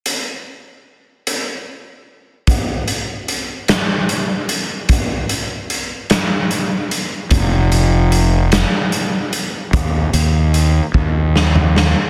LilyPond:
<<
  \new Staff \with { instrumentName = "Fingered electric bass" } { \clef bass \time 6/8 \key ees \lydian \tempo 4. = 50 r2. | r2. | r2. | f,,2 r4 |
ees,8 ees,4 ees,4. | }
  \new DrumStaff \with { instrumentName = "Drums" } \drummode { \time 6/8 hh4. hh4. | <hh bd>8 hh8 hh8 <hh sn>8 hh8 hh8 | <hh bd>8 hh8 hh8 <hh sn>8 hh8 hh8 | <hh bd>8 hh8 hh8 <hh sn>8 hh8 hh8 |
<hh bd>8 hh8 hh8 bd8 sn16 toml16 sn8 | }
>>